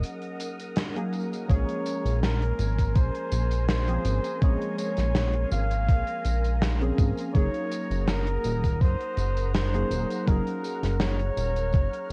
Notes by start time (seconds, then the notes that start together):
Already playing: F#3 A#3 C#4 D#4 G#4 A#4 D#5 F#5 A#5 D#6
0.03 closed hi-hat, tambourine
0.22 closed hi-hat
0.40 closed hi-hat, tambourine
0.59 closed hi-hat, tambourine
0.76 snare, closed hi-hat, tambourine
0.95 F#3 A#3 C#4 D#4 G#4, closed hi-hat
1.12 closed hi-hat, tambourine
1.33 closed hi-hat, tambourine
1.47 A#1 F3 G#3 A#3 C#4 G#4 C#5 G#5 A#5 C6, kick, closed hi-hat, tambourine
1.69 closed hi-hat
1.86 closed hi-hat, tambourine
2.05 A#1, closed hi-hat, tambourine
2.22 A#4, snare, closed hi-hat, tambourine
2.42 closed hi-hat
2.59 G#1, closed hi-hat, tambourine
2.78 kick, closed hi-hat, tambourine
2.95 A#1 C5, kick, closed hi-hat, tambourine
3.15 closed hi-hat
3.32 A#1, closed hi-hat, tambourine
3.51 closed hi-hat, tambourine
3.69 C5, snare, closed hi-hat, tambourine
3.88 F3 A#3 C4 C#4 G#4, closed hi-hat
4.05 G#1, closed hi-hat, tambourine
4.24 closed hi-hat, tambourine
4.41 A#1 F3 G#3 A#3 C#4 G#4 C#5, kick, closed hi-hat, tambourine
4.62 closed hi-hat
4.78 C#5, closed hi-hat, tambourine
4.97 A#1, snare, closed hi-hat, tambourine
5.15 snare, closed hi-hat, tambourine
5.33 closed hi-hat
5.51 G#1 F5, closed hi-hat, tambourine
5.71 closed hi-hat, tambourine
5.88 A#1, kick, closed hi-hat, tambourine
6.07 closed hi-hat
6.24 A#1, closed hi-hat, tambourine
6.44 closed hi-hat, tambourine
6.62 snare, closed hi-hat, tambourine
6.80 F3 A#3 C4 C#4 G#4, closed hi-hat
6.98 G#1, kick, closed hi-hat, tambourine
7.17 closed hi-hat, tambourine
7.33 F#1 F#3 A#3 C#4 D#4 G#4 C#5 F#5 D#6, kick, closed hi-hat, tambourine
7.54 closed hi-hat
7.72 closed hi-hat, tambourine
7.91 F#1, closed hi-hat, tambourine
8.07 A#4, snare, closed hi-hat, tambourine
8.27 closed hi-hat
8.44 D#1, closed hi-hat, tambourine
8.64 kick, closed hi-hat, tambourine
8.81 F#1 C5, kick, closed hi-hat, tambourine
9.01 closed hi-hat
9.17 F#1, closed hi-hat, tambourine
9.37 closed hi-hat, tambourine
9.54 C5, snare, closed hi-hat, tambourine
9.73 F#3 A#3 C#4 D#4 G#4, closed hi-hat
9.91 D#1, closed hi-hat, tambourine
10.10 closed hi-hat, tambourine
10.25 F#1 F#3 A#3 C#4 D#4 G#4 A#4 F6, kick, closed hi-hat, tambourine
10.47 closed hi-hat
10.64 closed hi-hat, tambourine
10.83 F#1, snare, closed hi-hat, tambourine
11.00 C#5, snare, closed hi-hat, tambourine
11.20 closed hi-hat
11.37 D#1, closed hi-hat, tambourine
11.56 closed hi-hat, tambourine
11.73 F#1, kick, closed hi-hat, tambourine
11.93 closed hi-hat